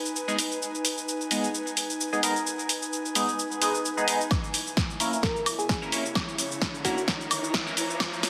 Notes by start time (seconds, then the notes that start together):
Already playing: D#4 B4 G#5
0.06 shaker
0.16 shaker
0.28 G#3 B3 D#4 G#4, shaker
0.39 open hi-hat, shaker
0.52 shaker
0.62 shaker
0.75 shaker
0.85 open hi-hat, shaker
0.98 shaker
1.08 shaker
1.21 shaker
1.31 G#3 B3 D#4 G#4, open hi-hat, shaker
1.44 shaker
1.55 shaker
1.67 shaker
1.77 open hi-hat, shaker
1.90 shaker
2.01 shaker
2.13 G#3 B3 D#4 G#4, shaker
2.23 G#3 B3 D#4 A#4, open hi-hat, shaker
2.36 shaker
2.47 shaker
2.59 shaker
2.69 open hi-hat, shaker
2.82 shaker
2.93 shaker
3.06 shaker
3.15 G#3 B3 D#4 G#4, open hi-hat, shaker
3.29 shaker
3.39 shaker
3.52 shaker
3.62 G#3 B3 D#4 G#4, open hi-hat, shaker
3.75 shaker
3.85 shaker
3.97 G#3 B3 D#4 G#4, shaker
4.08 G#3 B3 D#4 G#4, open hi-hat, shaker
4.21 shaker
4.31 E4, kick, snare, riser, high woodblock, shaker
4.44 shaker
4.54 open hi-hat, shaker
4.67 shaker
4.77 kick, snare, shaker
4.90 shaker
5.00 A#3 C#4 E4 A#4, open hi-hat, shaker
5.13 shaker
5.20 A#4 C#5, kick, snare, shaker
5.36 shaker
5.46 open hi-hat, high woodblock, shaker
5.59 G#4, shaker
5.69 G#4, kick, snare, shaker
5.82 A#3 C#4 E4 A#4, shaker
5.92 A#3 C#4 E4 C#5, open hi-hat, shaker
6.06 shaker
6.15 kick, snare, high woodblock, shaker
6.25 A#5, shaker
6.38 open hi-hat, shaker
6.52 shaker
6.62 kick, snare, shaker
6.75 shaker
6.85 A#3 C#4 E4 F#4 A#4, kick, open hi-hat, shaker
6.97 F#4, shaker
7.08 kick, snare, shaker
7.21 shaker
7.31 open hi-hat, high woodblock, shaker
7.44 shaker
7.54 kick, snare, shaker
7.66 A#3 C#4 E4 A#4, shaker
7.77 open hi-hat, shaker
7.90 shaker
8.00 kick, snare, high woodblock, shaker
8.13 shaker
8.23 snare, open hi-hat, shaker